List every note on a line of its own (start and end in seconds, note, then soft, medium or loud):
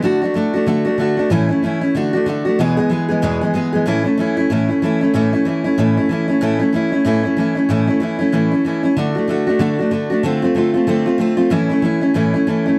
0.02 0.22 D3 medium
0.02 0.23 A3 medium
0.02 0.22 D4 medium
0.02 0.21 F#4 medium
0.22 0.34 A3 medium
0.22 0.35 D4 medium
0.22 0.35 F#4 medium
0.34 0.54 D3 medium
0.34 0.54 A3 medium
0.34 0.54 D4 medium
0.34 0.52 F#4 medium
0.54 0.66 A3 soft
0.54 0.67 D4 medium
0.54 0.67 F#4 medium
0.67 0.86 D3 medium
0.67 0.86 A3 medium
0.67 0.85 D4 medium
0.67 0.84 F#4 medium
0.85 0.98 A3 medium
0.85 0.99 D4 soft
0.85 0.99 F#4 medium
0.98 1.18 D3 medium
0.98 1.18 A3 medium
0.98 1.18 D4 medium
0.98 1.16 F#4 medium
1.17 1.30 A3 soft
1.17 1.31 D4 medium
1.17 1.31 F#4 medium
1.30 1.50 A2 medium
1.30 1.50 E3 medium
1.30 1.50 A3 loud
1.30 1.50 C#4 loud
1.30 1.48 E4 loud
1.49 1.63 A3 medium
1.49 1.63 C#4 medium
1.49 1.63 E4 medium
1.62 1.82 E3 medium
1.62 1.82 A3 medium
1.62 1.82 C#4 medium
1.62 1.80 E4 medium
1.81 1.94 A3 soft
1.81 1.96 C#4 medium
1.81 1.95 E4 medium
1.95 2.14 D3 medium
1.95 2.14 A3 medium
1.95 2.14 D4 medium
1.95 2.12 F#4 loud
2.13 2.26 A3 medium
2.13 2.27 D4 medium
2.13 2.27 F#4 medium
2.26 2.46 D3 medium
2.26 2.46 A3 medium
2.26 2.46 D4 medium
2.26 2.44 F#4 medium
2.45 2.60 A3 soft
2.45 2.59 D4 medium
2.45 2.59 F#4 medium
2.59 2.78 E2 medium
2.59 2.78 B2 medium
2.59 2.78 E3 medium
2.59 2.78 G#3 medium
2.59 2.77 B3 medium
2.59 2.76 G#4 loud
2.77 2.88 E3 medium
2.77 2.90 G#3 medium
2.77 2.91 B3 medium
2.77 2.91 G#4 medium
2.90 3.09 E3 medium
2.90 3.10 G#3 medium
2.90 3.09 B3 medium
2.90 3.07 G#4 medium
3.09 3.22 E3 soft
3.09 3.22 G#3 soft
3.09 3.23 B3 soft
3.09 3.22 G#4 medium
3.22 3.42 E2 medium
3.22 3.42 B2 medium
3.22 3.42 E3 medium
3.22 3.42 G#3 loud
3.22 3.41 B3 loud
3.22 3.40 G#4 medium
3.41 3.52 E3 medium
3.41 3.54 G#3 soft
3.41 3.55 B3 medium
3.41 3.55 G#4 medium
3.54 3.73 E3 medium
3.54 3.74 G#3 medium
3.54 3.73 B3 medium
3.54 3.71 G#4 medium
3.73 3.85 E3 soft
3.73 3.87 G#3 medium
3.73 3.87 B3 medium
3.73 3.86 G#4 medium
3.86 4.05 A2 medium
3.86 4.06 E3 medium
3.86 4.06 A3 loud
3.86 4.04 C#4 medium
3.86 4.03 E4 loud
4.04 4.18 A3 medium
4.04 4.19 C#4 medium
4.04 4.18 E4 medium
4.18 4.37 E3 medium
4.18 4.38 A3 medium
4.18 4.38 C#4 medium
4.18 4.36 E4 medium
4.37 4.50 A3 soft
4.37 4.51 C#4 medium
4.37 4.50 E4 medium
4.50 4.69 A2 medium
4.50 4.70 E3 medium
4.50 4.70 A3 medium
4.50 4.70 C#4 medium
4.50 4.68 E4 medium
4.69 4.82 A3 soft
4.69 4.83 C#4 medium
4.69 4.82 E4 medium
4.82 5.01 E3 medium
4.82 5.02 A3 medium
4.82 5.02 C#4 medium
4.82 5.00 E4 medium
5.01 5.14 A3 medium
5.01 5.14 C#4 medium
5.01 5.14 E4 medium
5.14 5.33 A2 medium
5.14 5.33 E3 medium
5.14 5.34 A3 loud
5.14 5.34 C#4 loud
5.14 5.32 E4 medium
5.33 5.45 A3 soft
5.33 5.46 C#4 soft
5.33 5.46 E4 medium
5.45 5.65 E3 medium
5.45 5.66 A3 medium
5.45 5.65 C#4 medium
5.45 5.63 E4 medium
5.64 5.78 A3 soft
5.64 5.78 C#4 medium
5.64 5.78 E4 medium
5.78 5.97 A2 medium
5.78 5.97 E3 medium
5.78 5.98 A3 medium
5.78 5.98 C#4 medium
5.78 5.96 E4 medium
5.97 6.09 A3 soft
5.97 6.10 C#4 medium
5.97 6.10 E4 medium
6.09 6.29 E3 medium
6.09 6.29 A3 medium
6.09 6.28 C#4 medium
6.09 6.27 E4 medium
6.28 6.41 A3 soft
6.28 6.41 C#4 medium
6.28 6.42 E4 medium
6.41 6.61 A2 loud
6.41 6.61 E3 medium
6.41 6.61 A3 medium
6.41 6.60 C#4 medium
6.41 6.58 E4 loud
6.59 6.73 A3 soft
6.59 6.74 C#4 medium
6.59 6.73 E4 medium
6.73 6.92 E3 medium
6.73 6.93 A3 medium
6.73 6.92 C#4 medium
6.73 6.91 E4 medium
6.92 7.05 A3 soft
6.92 7.05 C#4 medium
6.92 7.06 E4 medium
7.05 7.24 A2 medium
7.05 7.24 E3 medium
7.05 7.25 A3 medium
7.05 7.24 C#4 medium
7.05 7.22 E4 medium
7.23 7.37 A3 soft
7.23 7.38 C#4 medium
7.23 7.37 E4 medium
7.37 7.56 E3 medium
7.37 7.57 A3 medium
7.37 7.56 C#4 medium
7.37 7.54 E4 medium
7.55 7.69 A3 soft
7.55 7.70 C#4 medium
7.55 7.69 E4 medium
7.69 7.88 A2 medium
7.69 7.89 E3 medium
7.69 7.89 A3 loud
7.69 7.88 C#4 loud
7.69 7.86 E4 loud
7.87 8.00 A3 medium
7.87 8.01 C#4 medium
7.87 8.01 E4 medium
8.00 8.20 E3 medium
8.00 8.20 A3 medium
8.00 8.20 C#4 medium
8.00 8.17 E4 medium
8.19 8.32 A3 soft
8.19 8.33 C#4 soft
8.19 8.32 E4 medium
8.32 8.52 A2 medium
8.32 8.52 E3 medium
8.32 8.52 A3 medium
8.32 8.52 C#4 medium
8.32 8.50 E4 medium
8.51 8.65 A3 medium
8.51 8.66 C#4 medium
8.51 8.65 E4 medium
8.65 8.84 E3 medium
8.65 8.85 A3 medium
8.65 8.84 C#4 medium
8.65 8.82 E4 medium
8.83 8.96 A3 soft
8.83 8.97 C#4 medium
8.83 8.97 E4 medium
8.97 9.16 D3 medium
8.97 9.16 A3 medium
8.97 9.16 D4 medium
8.97 9.14 F#4 medium
9.15 9.28 A3 soft
9.15 9.29 D4 medium
9.15 9.28 F#4 medium
9.28 9.47 D3 medium
9.28 9.48 A3 medium
9.28 9.47 D4 medium
9.28 9.46 F#4 medium
9.47 9.59 A3 soft
9.47 9.60 D4 soft
9.47 9.60 F#4 medium
9.59 9.79 D3 medium
9.59 9.79 A3 medium
9.59 9.79 D4 medium
9.59 9.78 F#4 loud
9.79 9.91 A3 soft
9.79 9.92 D4 medium
9.79 9.92 F#4 medium
9.91 10.11 D3 medium
9.91 10.11 A3 medium
9.91 10.11 D4 medium
9.91 10.09 F#4 medium
10.10 10.23 A3 soft
10.10 10.25 D4 medium
10.10 10.24 F#4 medium
10.23 10.43 D3 medium
10.23 10.43 A3 medium
10.23 10.43 C4 medium
10.23 10.41 F4 loud
10.42 10.55 A3 medium
10.42 10.56 C4 medium
10.42 10.56 F4 medium
10.55 10.74 D3 medium
10.55 10.75 A3 medium
10.55 10.75 C4 medium
10.55 10.73 F4 medium
10.74 10.86 A3 soft
10.74 10.88 C4 soft
10.74 10.87 F4 medium
10.87 11.06 D3 medium
10.87 11.07 A3 medium
10.87 11.06 C4 loud
10.87 11.04 F4 medium
11.06 11.18 A3 medium
11.06 11.19 C4 medium
11.06 11.19 F4 medium
11.18 11.38 D3 medium
11.18 11.39 A3 medium
11.18 11.37 C4 medium
11.18 11.36 F4 medium
11.37 11.50 A3 soft
11.37 11.51 C4 medium
11.37 11.51 F4 medium
11.50 11.70 A2 medium
11.50 11.70 E3 medium
11.50 11.70 A3 loud
11.50 11.70 C#4 medium
11.50 11.68 E4 loud
11.69 11.82 A3 soft
11.69 11.83 C#4 medium
11.69 11.83 E4 medium
11.82 12.02 E3 medium
11.82 12.02 A3 medium
11.82 12.02 C#4 medium
11.82 12.00 E4 medium
12.01 12.14 A3 soft
12.01 12.15 C#4 medium
12.01 12.15 E4 medium
12.14 12.34 A2 medium
12.14 12.34 E3 medium
12.14 12.34 A3 medium
12.14 12.35 C#4 medium
12.14 12.33 E4 medium
12.34 12.47 A3 medium
12.34 12.48 C#4 medium
12.34 12.47 E4 medium
12.47 12.66 E3 medium
12.47 12.66 A3 medium
12.47 12.67 C#4 medium
12.47 12.64 E4 medium
12.66 12.79 A3 soft
12.66 12.79 C#4 medium
12.66 12.79 E4 medium